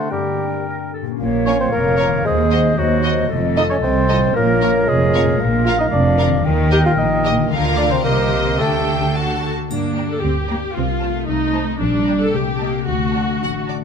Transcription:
Already playing: harp D3 A3 C4 D4 F#4 A4, bassoon A3, clarinet D4, oboe C5, flute F#5
0.11 harp G2, bassoon G3, clarinet G4, oboe A#4, flute G5
0.29 harp A#3
0.48 harp D4
0.66 harp G4, clarinet A#4
0.84 harp A#4
0.93 clarinet A4
1.02 harp A#2 G4
1.07 harp A#3
1.12 harp C#4
1.16 harp F4, flute F5
1.20 double bass section A#1, cello section A#2, french horn section A#4 C#5, clarinet C#5
1.46 bassoon C#4, viola section F4, violin section A#4 C#5, oboe C#5
1.60 bassoon C4, oboe C5
1.72 double bass section F1, cello section F2, bassoon A#3, oboe A#4
1.98 viola section F4, violin section A#4 C#5
2.08 harp D#3
2.12 harp C4
2.16 harp D#4
2.21 harp F#4
2.25 double bass section D#2, cello section D#2, bassoon G#3, oboe G#4, clarinet C5, french horn section C5 D#5, flute D#5
2.51 viola section F#4, violin section C5 D#5
2.77 double bass section D#2, cello section D#2, bassoon F#3, oboe F#4
3.03 viola section F#4, violin section C5 D#5
3.12 harp F3
3.17 harp A3
3.21 harp D#4
3.26 double bass section F1, harp F4, clarinet A4
3.31 cello section F2, french horn section A4
3.56 bassoon D#4, viola section F4, violin section A4 D#5, oboe D#5
3.70 bassoon C#4, oboe C#5
3.83 cello section C2, double bass section C2, bassoon C4, oboe C5
4.09 viola section F4, violin section A4 D#5
4.17 harp A#2
4.22 harp A#3
4.26 harp C#4
4.31 harp F4
4.35 double bass section A#1, cello section A#2, bassoon A#3, french horn section F4 C#5, clarinet A#4, oboe A#4, flute C#5
4.62 viola section F4, violin section A#4 C#5
4.87 double bass section F1, cello section F2, bassoon G#3, oboe G#4
5.14 viola section F4, violin section A#4 C#5
5.22 harp A#2
5.26 harp A#3
5.31 harp F4
5.35 harp A#4
5.40 double bass section A#1, cello section A#2, flute F5
5.65 french horn section F4 A#4, bassoon F4, viola section F4, violin section A#4 F5, oboe F5
5.79 bassoon D#4, oboe D#5
5.92 double bass section F1, cello section F2, bassoon D4, oboe D5
6.17 french horn section F4 A#4, viola section F4, violin section A#4 F5
6.27 harp D#3
6.31 harp A#3
6.36 harp G4
6.40 harp A#4
6.44 double bass section D#2, cello section D#3, clarinet A#4, flute G5
6.69 french horn section G4 A#4, bassoon G4, viola section G4, violin section A#4 D#5, oboe G5
6.84 bassoon F4, oboe F5
6.97 double bass section A#1, cello section A#2, bassoon D#4, oboe D#5
7.23 french horn section G4 A#4, viola section G4, violin section A#4 D#5
7.33 harp D3
7.38 harp A#3
7.42 harp F4
7.47 cello section D3, harp A#4, violin section A#4
7.51 double bass section D2, viola section F4, violin section F5, flute F5
7.75 bassoon D4, french horn section F4 A#4, oboe D5
7.87 harp C3, oboe C5
7.91 harp G3, bassoon C4
7.96 harp D#4
8.01 double bass section C2, cello section C3, bassoon A#3, clarinet G4, oboe A#4, harp C5, violin section C5 D#5, flute D#5
8.05 viola section G4
8.33 french horn section G4 C5
8.42 harp D3
8.47 harp G3
8.51 harp G4
8.56 harp A4, oboe A4, flute G5
8.60 double bass section D2, cello section D3, bassoon A3, viola section G4, violin section A4 G5, clarinet A4
8.87 french horn section G4 A4
8.98 harp D3
9.02 harp A3
9.07 harp F#4
9.11 harp A4, violin section A5
9.15 viola section F#4, violin section A4, flute F#5
9.43 french horn section F#4 A4
9.71 harp G2, double bass section G2, cello section A#3, viola section D4, triangle
9.88 harp A#3
9.98 violin section D5 G5 A#5
10.06 harp D4
10.11 viola section A4
10.23 double bass section D2, cello section C4, viola section G4, harp G4
10.41 harp A#4
10.49 cello section A#3, violin section D5 G5 A#5
10.58 harp G4
10.76 double bass section C2, harp C3, cello section C4, viola section F4
10.93 harp C4
11.01 cello section A3, violin section C5 A5
11.11 harp A4
11.28 double bass section C2, harp C4, viola section D#4
11.47 harp C5
11.54 violin section C5 A5
11.64 harp A4
11.80 double bass section A#1, harp A#2, cello section G3, viola section D4
11.98 harp A#3
12.07 violin section D5 G5 A#5
12.16 harp D4 G4
12.21 viola section A4
12.33 double bass section C2, harp C3, cello section A3, viola section G4
12.52 harp A3
12.60 cello section A#3, violin section D#5 A5
12.69 harp D#4 A4
12.87 double bass section D2, harp D3, cello section A3, viola section F#4
13.05 harp D4
13.15 violin section D5 A5
13.23 harp A4
13.41 double bass section A1, harp D4, violin section F#5
13.59 harp D5
13.69 violin section D5 A5
13.77 harp A4

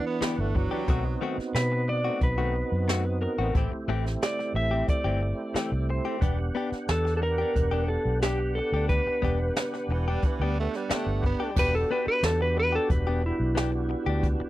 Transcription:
Already playing: tonewheel organ E3 B3 D4 F#5, electric slide guitar G4
0.06 tenor saxophone B3
0.21 clean electric guitar E3 B3 D4 G4, muted fingered electric bass stroke, snare, closed hi-hat
0.38 fingered electric bass G1, tenor saxophone A3, muted clean electric guitar stroke
0.55 tenor saxophone F#3, muted clean electric guitar stroke, kick
0.71 clean electric guitar B3 D4 G4
0.87 fingered electric bass B1, clean electric guitar D#3 A3 C4 F#4, tonewheel organ B3 C4 D#4 F#4, kick, closed hi-hat
1.05 muted clean electric guitar stroke
1.21 clean electric guitar D#3 A3 C4 F#4
1.38 muted fingered electric bass stroke, muted clean electric guitar stroke, snare
1.55 fingered electric bass B2, electric slide guitar B4, snare, closed hi-hat
1.72 muted clean electric guitar stroke
1.88 electric slide guitar D5, muted clean electric guitar stroke
2.04 clean electric guitar A3 C4 F#4
2.21 fingered electric bass B1, electric slide guitar B4, muted clean electric guitar stroke, kick, closed hi-hat
2.38 clean electric guitar D#3 A3 C4 F#4
2.55 muted clean electric guitar stroke
2.72 fingered electric bass F#2
2.88 clean electric guitar D#3 A3 C4 F#4, snare, closed hi-hat
3.05 muted clean electric guitar stroke
3.22 electric slide guitar A#4, muted clean electric guitar stroke
3.38 fingered electric bass A1, clean electric guitar A3 C4 F#4
3.53 fingered electric bass A1, clean electric guitar E3 A3 C4, tonewheel organ A3 C4 E4 G4, kick, closed hi-hat
3.57 clean electric guitar G4
3.71 muted fingered electric bass stroke, muted clean electric guitar stroke
3.88 fingered electric bass A1, clean electric guitar E3 A3 C4 G4
4.06 muted clean electric guitar stroke, snare
4.22 electric slide guitar D5, snare, closed hi-hat
4.39 muted clean electric guitar stroke, snare
4.54 fingered electric bass A1, electric slide guitar E5, muted clean electric guitar stroke
4.71 clean electric guitar A3 C4 G4
4.88 electric slide guitar D5, muted clean electric guitar stroke, kick, closed hi-hat
5.04 fingered electric bass G1, clean electric guitar E3 A3 C4 G4
5.21 muted clean electric guitar stroke
5.54 clean electric guitar E3 A3 C4 G4, muted fingered electric bass stroke, snare, closed hi-hat
5.72 fingered electric bass C2, muted clean electric guitar stroke
5.89 electric slide guitar C5, muted clean electric guitar stroke
6.05 clean electric guitar A3 C4 G4
6.18 fingered electric bass E1, tonewheel organ B3 D4 G4 F#5, clean electric guitar B3 D4, kick, closed hi-hat
6.23 clean electric guitar G4
6.39 muted clean electric guitar stroke
6.55 clean electric guitar B3 D4 G4
6.72 muted fingered electric bass stroke, snare
6.88 fingered electric bass E2, electric slide guitar A4, snare, closed hi-hat
7.05 muted clean electric guitar stroke, snare
7.17 electric slide guitar A4
7.22 electric slide guitar A#4, muted clean electric guitar stroke
7.38 clean electric guitar D4 G4
7.55 fingered electric bass E1, muted clean electric guitar stroke, kick, closed hi-hat
7.71 clean electric guitar B3 D4 G4
7.88 electric slide guitar A4, muted clean electric guitar stroke
8.05 fingered electric bass B1
8.22 clean electric guitar B3 D4, electric slide guitar G4, snare, closed hi-hat
8.26 clean electric guitar G4
8.55 electric slide guitar A4, muted clean electric guitar stroke
8.72 fingered electric bass D2, clean electric guitar G4
8.76 clean electric guitar D4
8.89 electric slide guitar B4, kick, closed hi-hat
9.06 muted fingered electric bass stroke, muted clean electric guitar stroke
9.22 fingered electric bass E1, clean electric guitar B3 D4 G4, kick
9.56 snare, closed hi-hat
9.74 muted clean electric guitar stroke, snare
9.89 fingered electric bass E1, tenor saxophone E3, muted clean electric guitar stroke
10.08 tenor saxophone G3, clean electric guitar D4 G4
10.23 tenor saxophone E3, muted clean electric guitar stroke, kick, closed hi-hat
10.40 fingered electric bass D2, tenor saxophone G3, clean electric guitar B3 D4 G4
10.60 tenor saxophone A3
10.74 tenor saxophone G3, snare
10.90 clean electric guitar B3 D4 G4, muted fingered electric bass stroke, snare, closed hi-hat
10.94 tenor saxophone A3
11.06 fingered electric bass G1, muted clean electric guitar stroke
11.23 tenor saxophone B3, muted clean electric guitar stroke, kick
11.40 clean electric guitar D4 G4
11.55 fingered electric bass E1, tonewheel organ B3 D4 F#4 G4, clean electric guitar B3 D4 G4, electric slide guitar B4, kick, crash
11.74 electric slide guitar A4, muted clean electric guitar stroke
11.91 clean electric guitar B3 D4 G4, electric slide guitar B4
12.07 electric slide guitar B4, muted fingered electric bass stroke, muted clean electric guitar stroke
12.23 fingered electric bass E2, electric slide guitar A4, snare, closed hi-hat
12.41 electric slide guitar B4, muted clean electric guitar stroke
12.57 electric slide guitar B4, muted clean electric guitar stroke
12.72 clean electric guitar D4 G4, electric slide guitar A4
12.89 fingered electric bass E1, electric slide guitar B4, muted clean electric guitar stroke, kick, closed hi-hat
13.07 clean electric guitar B3 D4 G4
13.26 electric slide guitar E4
13.40 fingered electric bass B1
13.55 clean electric guitar B3 D4 G4, snare, closed hi-hat
13.72 muted clean electric guitar stroke
13.89 muted clean electric guitar stroke
14.06 fingered electric bass D2, clean electric guitar D4 G4
14.23 kick, closed hi-hat
14.40 muted clean electric guitar stroke

